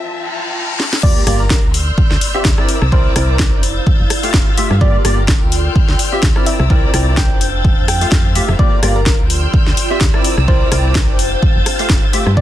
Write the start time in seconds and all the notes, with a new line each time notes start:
Already playing: F4 E5 G5 A5
0.09 reverse cymbal
0.80 snare
0.93 snare
1.03 A#3 F4 G4 D5 F5 A#5, kick, crash, sub drop
1.27 G1 A#3 F4 G4 D5, cross-stick, open hi-hat
1.40 A#4
1.50 A#4, kick, snare
1.64 D2
1.74 D5 C6 E6 F6 G6, open hi-hat
1.81 C5
1.98 kick
2.11 D2, snare
2.21 open hi-hat
2.34 C4 F4 G4 E5
2.45 D2, kick, snare
2.58 C4 E4 A#4 D5, cross-stick
2.68 E4 C5 A#5 D6, open hi-hat
2.82 C2, cross-stick
2.92 C4 E4 A#4 C5 D5, kick
3.02 D5
3.16 C2 C4 E4 A#4 D5, cross-stick, open hi-hat
3.39 kick, snare
3.52 F1
3.63 F4 F5 E6 G6 A6, open hi-hat
3.80 G5
3.87 kick
4.00 F1
4.10 cross-stick, open hi-hat
4.17 E6
4.23 A3 F4 G4 F5, open hi-hat
4.34 F1, kick, snare
4.57 A3 F4 G4 E5, open hi-hat
4.71 G2, cross-stick
4.81 A#3 F4 G4 D5 A#5, kick
5.05 G1 A#3 F4 G4 D5, cross-stick, open hi-hat
5.28 kick, snare
5.41 D2
5.52 D5 C6 E6 F6 G6, open hi-hat
5.70 C5
5.76 kick
5.88 D2, snare
5.99 open hi-hat
6.12 C4 F4 G4 E5
6.23 D2, kick, snare
6.36 C4 E4 A#4 D5, cross-stick
6.46 D4 C5 E5 A#5 D6, open hi-hat
6.60 C2 E5, cross-stick
6.70 C4 E4 A#4 D5, kick
6.94 C2 C4 E4 A#4 D5, cross-stick, open hi-hat
7.17 G5, kick, snare
7.30 F1
7.41 F4 F5 E6 G6 A6, open hi-hat
7.65 kick
7.78 F2
7.88 G5, cross-stick, open hi-hat
8.01 A3 F4 G4 F5, open hi-hat
8.12 F2, kick, snare
8.35 A3 F4 G4 E5, open hi-hat
8.48 F1, cross-stick
8.59 A#3 F4 G4 D5 A#5, kick
8.83 G1 A#3 F4 G4 D5, cross-stick, open hi-hat
8.96 A#4
9.06 A#4, kick, snare
9.19 D2
9.30 D5 C6 E6 F6 G6, open hi-hat
9.54 kick
9.66 D2, snare
9.73 C5
9.77 open hi-hat
9.90 C4 F4 G4 E5
10.01 D2, kick, snare
10.14 C4 E4 A#4 D5, cross-stick
10.24 D4 C5 A#5 D6, open hi-hat
10.38 C2, cross-stick
10.48 C4 E4 A#4 C5 D5, kick
10.72 C2 C4 E4 A#4 D5, cross-stick, open hi-hat
10.95 kick, snare
11.08 F1
11.19 F4 F5 E6 G6 A6, open hi-hat
11.42 kick
11.56 F1
11.66 cross-stick, open hi-hat
11.73 G5
11.79 A3 F4 G4 F5, open hi-hat
11.90 F1, kick, snare
12.13 A3 F4 G4 E5, open hi-hat
12.26 G2, cross-stick
12.37 A#3 F4 G4 D5 F5 A#5, kick